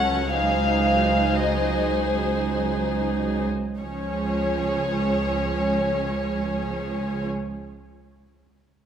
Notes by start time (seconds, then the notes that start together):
Already playing: C#2 F#3 C#4 A4 C#5 F#5
0.32 F#3 D#4 G#4 C5 F5
1.37 D#5
3.80 C#2 F3 C#4 G#4 C#5